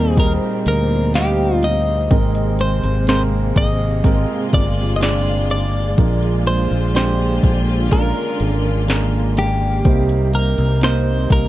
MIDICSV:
0, 0, Header, 1, 6, 480
1, 0, Start_track
1, 0, Tempo, 967742
1, 1046, Time_signature, 4, 2, 24, 8
1, 5696, End_track
2, 0, Start_track
2, 0, Title_t, "Clean electric guitar"
2, 0, Program_c, 0, 27
2, 0, Note_on_c, 0, 70, 74
2, 91, Note_off_c, 0, 70, 0
2, 97, Note_on_c, 0, 70, 80
2, 161, Note_off_c, 0, 70, 0
2, 338, Note_on_c, 0, 70, 81
2, 555, Note_off_c, 0, 70, 0
2, 573, Note_on_c, 0, 67, 77
2, 814, Note_on_c, 0, 75, 96
2, 817, Note_off_c, 0, 67, 0
2, 1270, Note_off_c, 0, 75, 0
2, 1294, Note_on_c, 0, 72, 81
2, 1514, Note_off_c, 0, 72, 0
2, 1533, Note_on_c, 0, 72, 89
2, 1597, Note_off_c, 0, 72, 0
2, 1773, Note_on_c, 0, 75, 96
2, 2230, Note_off_c, 0, 75, 0
2, 2254, Note_on_c, 0, 74, 76
2, 2441, Note_off_c, 0, 74, 0
2, 2462, Note_on_c, 0, 75, 71
2, 2491, Note_off_c, 0, 75, 0
2, 2494, Note_on_c, 0, 74, 84
2, 2728, Note_off_c, 0, 74, 0
2, 2734, Note_on_c, 0, 74, 86
2, 3209, Note_off_c, 0, 74, 0
2, 3211, Note_on_c, 0, 72, 69
2, 3448, Note_off_c, 0, 72, 0
2, 3454, Note_on_c, 0, 72, 70
2, 3910, Note_off_c, 0, 72, 0
2, 3932, Note_on_c, 0, 70, 64
2, 4389, Note_off_c, 0, 70, 0
2, 4656, Note_on_c, 0, 67, 69
2, 5111, Note_off_c, 0, 67, 0
2, 5133, Note_on_c, 0, 70, 70
2, 5376, Note_off_c, 0, 70, 0
2, 5378, Note_on_c, 0, 72, 74
2, 5615, Note_off_c, 0, 72, 0
2, 5617, Note_on_c, 0, 70, 86
2, 5696, Note_off_c, 0, 70, 0
2, 5696, End_track
3, 0, Start_track
3, 0, Title_t, "Grand piano"
3, 0, Program_c, 1, 0
3, 0, Control_c, 1, 64, 127
3, 0, Note_on_c, 1, 46, 57
3, 0, Note_on_c, 1, 55, 75
3, 0, Note_on_c, 1, 63, 64
3, 0, Note_on_c, 1, 74, 85
3, 62, Note_off_c, 1, 55, 0
3, 63, Note_off_c, 1, 63, 0
3, 63, Note_off_c, 1, 74, 0
3, 88, Note_on_c, 1, 55, 70
3, 88, Note_on_c, 1, 63, 66
3, 91, Note_on_c, 1, 68, 63
3, 121, Note_off_c, 1, 68, 0
3, 123, Note_on_c, 1, 70, 75
3, 543, Note_off_c, 1, 55, 0
3, 543, Note_off_c, 1, 63, 0
3, 560, Note_off_c, 1, 70, 0
3, 565, Note_on_c, 1, 55, 65
3, 566, Note_on_c, 1, 63, 60
3, 570, Note_on_c, 1, 77, 72
3, 1022, Note_off_c, 1, 55, 0
3, 1022, Note_off_c, 1, 63, 0
3, 1024, Note_off_c, 1, 77, 0
3, 1046, Note_on_c, 1, 51, 57
3, 1046, Note_on_c, 1, 56, 66
3, 1047, Note_on_c, 1, 44, 60
3, 1047, Note_on_c, 1, 60, 62
3, 1049, Note_on_c, 1, 70, 77
3, 1053, Control_c, 1, 64, 0
3, 1056, Note_off_c, 1, 46, 0
3, 1142, Control_c, 1, 64, 127
3, 1502, Note_off_c, 1, 56, 0
3, 1502, Note_off_c, 1, 60, 0
3, 1503, Note_off_c, 1, 70, 0
3, 1524, Note_on_c, 1, 56, 78
3, 1527, Note_on_c, 1, 60, 62
3, 1529, Note_on_c, 1, 70, 77
3, 1746, Note_off_c, 1, 51, 0
3, 1747, Note_off_c, 1, 44, 0
3, 1981, Note_off_c, 1, 56, 0
3, 1983, Note_off_c, 1, 60, 0
3, 1984, Note_off_c, 1, 70, 0
3, 2002, Note_on_c, 1, 56, 73
3, 2005, Note_on_c, 1, 60, 62
3, 2006, Note_on_c, 1, 70, 78
3, 2460, Note_off_c, 1, 56, 0
3, 2461, Note_off_c, 1, 60, 0
3, 2462, Note_off_c, 1, 70, 0
3, 2480, Note_on_c, 1, 56, 64
3, 2483, Note_on_c, 1, 60, 55
3, 2485, Note_on_c, 1, 62, 70
3, 2939, Note_off_c, 1, 56, 0
3, 2940, Note_off_c, 1, 60, 0
3, 2941, Note_off_c, 1, 62, 0
3, 2964, Note_on_c, 1, 56, 65
3, 2966, Note_on_c, 1, 46, 54
3, 2966, Note_on_c, 1, 53, 59
3, 2966, Note_on_c, 1, 62, 61
3, 2967, Note_on_c, 1, 70, 65
3, 2972, Control_c, 1, 64, 0
3, 3048, Control_c, 1, 64, 127
3, 3421, Note_off_c, 1, 56, 0
3, 3422, Note_off_c, 1, 62, 0
3, 3422, Note_off_c, 1, 70, 0
3, 3442, Note_on_c, 1, 56, 65
3, 3443, Note_on_c, 1, 62, 64
3, 3446, Note_on_c, 1, 67, 78
3, 3666, Note_off_c, 1, 46, 0
3, 3666, Note_off_c, 1, 53, 0
3, 3900, Note_off_c, 1, 56, 0
3, 3900, Note_off_c, 1, 62, 0
3, 3902, Note_off_c, 1, 67, 0
3, 3922, Note_on_c, 1, 56, 69
3, 3924, Note_on_c, 1, 61, 54
3, 3926, Note_on_c, 1, 70, 81
3, 3957, Note_off_c, 1, 61, 0
3, 3957, Note_on_c, 1, 62, 62
3, 4380, Note_off_c, 1, 56, 0
3, 4382, Note_off_c, 1, 70, 0
3, 4396, Note_off_c, 1, 62, 0
3, 4404, Note_on_c, 1, 56, 59
3, 4404, Note_on_c, 1, 62, 55
3, 4406, Note_on_c, 1, 70, 69
3, 4861, Note_off_c, 1, 56, 0
3, 4861, Note_off_c, 1, 62, 0
3, 4862, Note_off_c, 1, 70, 0
3, 4885, Note_on_c, 1, 58, 67
3, 4887, Note_on_c, 1, 48, 60
3, 4887, Note_on_c, 1, 55, 58
3, 4887, Note_on_c, 1, 63, 57
3, 4888, Note_on_c, 1, 72, 72
3, 4892, Control_c, 1, 64, 0
3, 4993, Control_c, 1, 64, 127
3, 5342, Note_off_c, 1, 58, 0
3, 5343, Note_off_c, 1, 63, 0
3, 5343, Note_off_c, 1, 72, 0
3, 5364, Note_on_c, 1, 58, 73
3, 5367, Note_on_c, 1, 63, 62
3, 5369, Note_on_c, 1, 70, 69
3, 5586, Note_off_c, 1, 48, 0
3, 5587, Note_off_c, 1, 55, 0
3, 5696, Note_off_c, 1, 58, 0
3, 5696, Note_off_c, 1, 63, 0
3, 5696, Note_off_c, 1, 70, 0
3, 5696, End_track
4, 0, Start_track
4, 0, Title_t, "String section"
4, 0, Program_c, 2, 48
4, 0, Note_on_c, 2, 46, 73
4, 0, Note_on_c, 2, 55, 68
4, 0, Note_on_c, 2, 58, 69
4, 0, Note_on_c, 2, 60, 76
4, 1028, Note_off_c, 2, 46, 0
4, 1029, Note_off_c, 2, 55, 0
4, 1030, Note_off_c, 2, 58, 0
4, 1048, Note_on_c, 2, 48, 75
4, 1050, Note_on_c, 2, 56, 71
4, 1051, Note_on_c, 2, 58, 67
4, 1990, Note_off_c, 2, 60, 0
4, 2012, Note_on_c, 2, 65, 74
4, 2948, Note_off_c, 2, 48, 0
4, 2949, Note_off_c, 2, 58, 0
4, 2959, Note_off_c, 2, 65, 0
4, 2965, Note_on_c, 2, 65, 79
4, 2966, Note_on_c, 2, 50, 73
4, 2966, Note_on_c, 2, 58, 67
4, 4866, Note_off_c, 2, 65, 0
4, 4867, Note_off_c, 2, 50, 0
4, 4868, Note_off_c, 2, 56, 0
4, 4889, Note_on_c, 2, 48, 65
4, 4889, Note_on_c, 2, 55, 61
4, 5696, Note_off_c, 2, 48, 0
4, 5696, Note_off_c, 2, 55, 0
4, 5696, Note_off_c, 2, 58, 0
4, 5696, End_track
5, 0, Start_track
5, 0, Title_t, "Fingered electric bass"
5, 0, Program_c, 3, 33
5, 0, Note_on_c, 3, 39, 95
5, 187, Note_off_c, 3, 39, 0
5, 329, Note_on_c, 3, 38, 86
5, 1028, Note_off_c, 3, 38, 0
5, 1045, Note_on_c, 3, 32, 95
5, 1386, Note_off_c, 3, 32, 0
5, 1407, Note_on_c, 3, 32, 84
5, 1747, Note_off_c, 3, 32, 0
5, 1766, Note_on_c, 3, 32, 105
5, 2106, Note_off_c, 3, 32, 0
5, 2250, Note_on_c, 3, 31, 73
5, 2948, Note_off_c, 3, 31, 0
5, 2968, Note_on_c, 3, 34, 101
5, 3307, Note_off_c, 3, 34, 0
5, 3329, Note_on_c, 3, 34, 84
5, 3668, Note_off_c, 3, 34, 0
5, 3687, Note_on_c, 3, 34, 91
5, 4027, Note_off_c, 3, 34, 0
5, 4169, Note_on_c, 3, 32, 86
5, 4868, Note_off_c, 3, 32, 0
5, 4887, Note_on_c, 3, 36, 97
5, 5227, Note_off_c, 3, 36, 0
5, 5249, Note_on_c, 3, 36, 91
5, 5588, Note_off_c, 3, 36, 0
5, 5607, Note_on_c, 3, 36, 85
5, 5696, Note_off_c, 3, 36, 0
5, 5696, End_track
6, 0, Start_track
6, 0, Title_t, "Drums"
6, 86, Note_on_c, 9, 36, 85
6, 87, Note_on_c, 9, 42, 81
6, 135, Note_off_c, 9, 36, 0
6, 136, Note_off_c, 9, 42, 0
6, 327, Note_on_c, 9, 42, 73
6, 376, Note_off_c, 9, 42, 0
6, 566, Note_on_c, 9, 42, 67
6, 573, Note_on_c, 9, 38, 107
6, 616, Note_off_c, 9, 42, 0
6, 622, Note_off_c, 9, 38, 0
6, 807, Note_on_c, 9, 42, 70
6, 856, Note_off_c, 9, 42, 0
6, 1045, Note_on_c, 9, 36, 107
6, 1045, Note_on_c, 9, 42, 70
6, 1095, Note_off_c, 9, 36, 0
6, 1095, Note_off_c, 9, 42, 0
6, 1165, Note_on_c, 9, 42, 43
6, 1214, Note_off_c, 9, 42, 0
6, 1284, Note_on_c, 9, 42, 57
6, 1334, Note_off_c, 9, 42, 0
6, 1406, Note_on_c, 9, 42, 55
6, 1456, Note_off_c, 9, 42, 0
6, 1523, Note_on_c, 9, 42, 68
6, 1532, Note_on_c, 9, 38, 108
6, 1572, Note_off_c, 9, 42, 0
6, 1582, Note_off_c, 9, 38, 0
6, 1765, Note_on_c, 9, 36, 67
6, 1766, Note_on_c, 9, 42, 71
6, 1815, Note_off_c, 9, 36, 0
6, 1815, Note_off_c, 9, 42, 0
6, 2004, Note_on_c, 9, 36, 86
6, 2005, Note_on_c, 9, 42, 86
6, 2054, Note_off_c, 9, 36, 0
6, 2054, Note_off_c, 9, 42, 0
6, 2246, Note_on_c, 9, 42, 69
6, 2248, Note_on_c, 9, 36, 84
6, 2296, Note_off_c, 9, 42, 0
6, 2297, Note_off_c, 9, 36, 0
6, 2486, Note_on_c, 9, 42, 77
6, 2493, Note_on_c, 9, 38, 103
6, 2536, Note_off_c, 9, 42, 0
6, 2543, Note_off_c, 9, 38, 0
6, 2729, Note_on_c, 9, 42, 61
6, 2778, Note_off_c, 9, 42, 0
6, 2966, Note_on_c, 9, 36, 88
6, 2966, Note_on_c, 9, 42, 65
6, 3015, Note_off_c, 9, 42, 0
6, 3016, Note_off_c, 9, 36, 0
6, 3089, Note_on_c, 9, 42, 47
6, 3138, Note_off_c, 9, 42, 0
6, 3207, Note_on_c, 9, 42, 60
6, 3257, Note_off_c, 9, 42, 0
6, 3447, Note_on_c, 9, 42, 73
6, 3457, Note_on_c, 9, 38, 108
6, 3497, Note_off_c, 9, 42, 0
6, 3506, Note_off_c, 9, 38, 0
6, 3686, Note_on_c, 9, 36, 75
6, 3688, Note_on_c, 9, 42, 62
6, 3736, Note_off_c, 9, 36, 0
6, 3738, Note_off_c, 9, 42, 0
6, 3925, Note_on_c, 9, 36, 83
6, 3926, Note_on_c, 9, 42, 84
6, 3975, Note_off_c, 9, 36, 0
6, 3976, Note_off_c, 9, 42, 0
6, 4166, Note_on_c, 9, 42, 68
6, 4215, Note_off_c, 9, 42, 0
6, 4406, Note_on_c, 9, 42, 77
6, 4413, Note_on_c, 9, 38, 109
6, 4456, Note_off_c, 9, 42, 0
6, 4463, Note_off_c, 9, 38, 0
6, 4648, Note_on_c, 9, 42, 73
6, 4697, Note_off_c, 9, 42, 0
6, 4885, Note_on_c, 9, 42, 63
6, 4886, Note_on_c, 9, 36, 106
6, 4935, Note_off_c, 9, 42, 0
6, 4936, Note_off_c, 9, 36, 0
6, 5006, Note_on_c, 9, 42, 45
6, 5055, Note_off_c, 9, 42, 0
6, 5126, Note_on_c, 9, 42, 62
6, 5176, Note_off_c, 9, 42, 0
6, 5247, Note_on_c, 9, 42, 54
6, 5297, Note_off_c, 9, 42, 0
6, 5363, Note_on_c, 9, 42, 76
6, 5373, Note_on_c, 9, 38, 108
6, 5413, Note_off_c, 9, 42, 0
6, 5423, Note_off_c, 9, 38, 0
6, 5606, Note_on_c, 9, 36, 75
6, 5607, Note_on_c, 9, 42, 67
6, 5655, Note_off_c, 9, 36, 0
6, 5657, Note_off_c, 9, 42, 0
6, 5696, End_track
0, 0, End_of_file